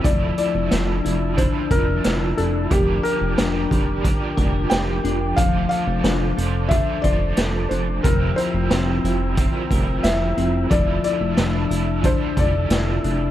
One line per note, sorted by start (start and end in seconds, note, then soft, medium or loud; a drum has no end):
0.00 1.34 F3 medium
0.00 1.37 A3 medium
0.00 0.11 C4 medium
0.00 0.38 E4 medium
0.00 0.11 A#4 medium
0.00 0.35 D5 medium
0.00 2.67 E6 medium
0.04 0.34 F1 loud
0.04 2.71 F3 medium
0.04 1.38 D4 medium
0.04 1.39 E4 medium
0.04 1.40 A4 medium
0.04 2.68 D5 medium
0.04 2.68 A5 medium
0.04 kick loud
0.04 closed hi-hat medium
0.38 1.03 E4 medium
0.38 1.41 D5 medium
0.38 closed hi-hat medium
0.55 0.69 F1 medium
0.71 1.01 F1 medium
0.71 1.37 D4 medium
0.71 snare loud
0.71 closed hi-hat medium
1.04 1.49 F1 medium
1.04 2.03 E4 medium
1.04 closed hi-hat medium
1.35 2.70 F3 medium
1.35 2.38 D4 medium
1.35 2.72 D4 medium
1.35 1.72 C5 medium
1.35 kick medium
1.35 closed hi-hat medium
1.40 2.72 E4 medium
1.71 2.00 F1 medium
1.71 2.40 A#4 medium
1.71 kick medium
1.71 closed hi-hat soft
2.04 2.34 F1 medium
2.04 2.77 E4 medium
2.04 snare loud
2.04 closed hi-hat medium
2.37 2.67 F1 medium
2.37 3.37 D4 medium
2.37 2.72 A4 medium
2.37 closed hi-hat soft
2.70 3.00 F1 loud
2.70 3.40 F3 medium
2.70 5.37 F3 medium
2.70 3.35 G3 medium
2.70 3.38 D4 medium
2.70 3.05 G4 medium
2.70 3.39 G4 medium
2.70 5.35 A#4 medium
2.70 3.39 A#4 medium
2.70 5.35 G5 medium
2.70 8.00 D6 medium
2.70 kick loud
2.70 closed hi-hat medium
3.03 3.70 G4 medium
3.03 4.75 A#4 medium
3.03 closed hi-hat soft
3.22 3.36 F1 medium
3.37 3.67 F1 medium
3.37 4.03 G3 soft
3.37 4.04 D4 medium
3.37 4.06 D4 medium
3.37 4.05 G4 medium
3.37 snare loud
3.37 closed hi-hat medium
3.41 4.06 A#4 medium
3.71 4.15 F1 medium
3.71 4.70 G4 medium
3.71 kick medium
3.71 closed hi-hat soft
4.02 5.37 F3 medium
4.02 5.38 G3 medium
4.02 5.03 D4 medium
4.02 5.38 D4 medium
4.02 kick medium
4.02 closed hi-hat medium
4.08 5.39 G4 medium
4.08 5.40 A#4 medium
4.37 4.67 F1 medium
4.37 5.44 A#4 medium
4.37 kick medium
4.37 closed hi-hat soft
4.70 5.00 F1 medium
4.70 5.44 G4 medium
4.70 5.39 G5 medium
4.70 snare loud
4.70 closed hi-hat medium
5.04 5.34 F1 medium
5.04 6.04 D4 medium
5.04 closed hi-hat soft
5.37 5.67 F1 medium
5.37 6.37 F3 medium
5.37 8.03 F3 medium
5.37 6.38 A3 medium
5.37 6.38 D4 medium
5.37 6.38 A4 medium
5.37 10.67 C5 medium
5.37 6.36 C5 medium
5.37 5.67 F5 medium
5.37 8.02 A5 medium
5.37 kick loud
5.37 closed hi-hat medium
5.69 6.36 A4 medium
5.69 6.73 F5 medium
5.69 closed hi-hat soft
5.87 6.02 F1 medium
6.04 6.33 F1 loud
6.04 6.69 D4 soft
6.04 snare loud
6.04 closed hi-hat medium
6.37 6.81 F1 medium
6.37 7.36 A4 medium
6.37 6.72 A4 soft
6.37 6.70 C5 soft
6.37 closed hi-hat medium
6.41 6.71 D4 soft
6.69 8.01 F3 medium
6.69 8.04 A3 medium
6.69 7.70 D4 medium
6.69 8.05 D4 medium
6.69 7.04 E5 medium
6.69 kick medium
6.69 closed hi-hat medium
6.74 8.06 A4 medium
6.74 8.09 C5 medium
7.02 7.33 F1 medium
7.02 9.71 C5 medium
7.02 7.72 D5 medium
7.02 kick medium
7.02 closed hi-hat soft
7.37 7.67 F1 medium
7.37 8.11 A4 medium
7.37 snare loud
7.37 closed hi-hat medium
7.69 8.00 F1 medium
7.69 8.11 D4 medium
7.69 8.04 C5 medium
7.69 closed hi-hat soft
8.02 8.34 F1 loud
8.02 9.35 F3 medium
8.02 10.70 F3 medium
8.02 9.36 G3 medium
8.02 9.38 C4 medium
8.02 8.38 A#4 medium
8.02 10.68 G5 medium
8.02 10.68 A#5 medium
8.02 13.31 E6 medium
8.02 kick loud
8.02 closed hi-hat medium
8.08 9.40 E4 medium
8.08 9.40 A#4 medium
8.36 9.04 E4 medium
8.36 10.08 C5 medium
8.36 closed hi-hat soft
8.54 8.69 F1 medium
8.70 9.00 F1 medium
8.70 9.37 C4 soft
8.70 snare loud
8.70 closed hi-hat medium
9.04 9.48 F1 medium
9.04 10.04 E4 medium
9.04 closed hi-hat medium
9.35 10.69 F3 medium
9.35 10.70 G3 medium
9.35 10.36 C4 medium
9.35 10.71 C4 medium
9.35 kick medium
9.35 closed hi-hat medium
9.41 10.72 E4 medium
9.41 10.72 A#4 medium
9.71 10.00 F1 medium
9.71 10.78 A#4 medium
9.71 kick medium
9.71 closed hi-hat medium
10.03 10.33 F1 medium
10.03 11.04 E4 medium
10.03 10.72 E5 medium
10.03 snare loud
10.03 closed hi-hat medium
10.37 10.67 F1 medium
10.37 10.78 C4 medium
10.37 closed hi-hat soft
10.69 11.00 F1 loud
10.69 11.37 F3 medium
10.69 13.31 F3 medium
10.69 11.35 A3 medium
10.69 11.37 D4 medium
10.69 11.39 E4 medium
10.69 11.38 A4 medium
10.69 13.31 D5 medium
10.69 11.03 D5 medium
10.69 13.31 E5 medium
10.69 13.31 A5 medium
10.69 kick loud
10.69 closed hi-hat medium
11.04 11.70 E4 medium
11.04 11.67 D5 medium
11.04 closed hi-hat soft
11.21 11.35 F1 medium
11.36 11.67 F1 medium
11.36 12.03 A3 soft
11.36 12.02 D4 medium
11.36 12.04 D4 medium
11.36 12.07 E4 medium
11.36 snare loud
11.36 closed hi-hat medium
11.41 12.06 A4 medium
11.70 12.15 F1 medium
11.70 12.70 E4 medium
11.70 closed hi-hat soft
12.01 13.31 F3 medium
12.01 13.31 A3 medium
12.01 13.03 D4 medium
12.01 kick medium
12.01 closed hi-hat medium
12.05 13.31 D4 medium
12.05 13.31 E4 medium
12.05 13.31 A4 medium
12.05 12.39 C5 medium
12.37 12.66 F1 medium
12.37 13.31 A4 medium
12.37 13.31 D5 medium
12.37 kick medium
12.37 closed hi-hat medium
12.70 13.00 F1 medium
12.70 13.31 E4 medium
12.70 snare loud
12.70 closed hi-hat medium
13.04 13.31 F1 medium
13.04 13.31 D4 medium
13.04 closed hi-hat soft